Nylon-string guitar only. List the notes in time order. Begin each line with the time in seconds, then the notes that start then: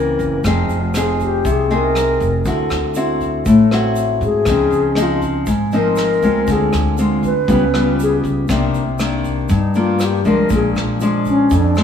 Already playing: C#3 E3 A#3 C4
0.46 F3 C4 D#4 G#4
0.96 C4 D#4 G#4
1.45 C3
1.70 C4 D#4 G#4
2.46 D3 C4 E4 F#4
2.96 C4 E4 F#4
3.47 A2
3.72 C4 E4 F#4
4.48 C#3 F3 C4 D#4
4.96 F3 C4 D#4
5.47 G#2
5.73 F3 C4 D#4
6.23 G#3 C4 F4
6.49 D3
6.99 G#3 C4 F4
7.48 C#3 G3 B3 F4
7.74 G3 B3 F4
8.50 C3 D#3 A#3 D4
8.99 D#3 A#3 D4
9.50 G2
9.75 D#3 A#3 D4
10.25 F3 G#3 D4
10.51 A#2
11.01 F3 G#3 D4
11.52 F2
11.77 F3 G#3 D4